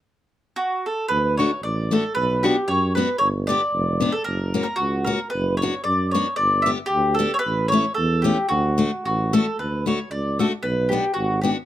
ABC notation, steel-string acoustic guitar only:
X:1
M:2/4
L:1/8
Q:"Swing" 1/4=113
K:D
V:1 name="Steel-string acoustic guitar"
z4 | z [A,DF] z [A,DF] | z [B,DF] z [B,DF] | z [B,DG] z [B,DG] |
z [^A,CF] z [A,CF] | z [B,DF] z [B,DF] | z [B,DG] z [B,DG] | z [A,CE] z [A,CE] |
z [A,DF] z [A,DF] | z [A,DF] z [A,DF] | z [B,DF] z [B,DF] |]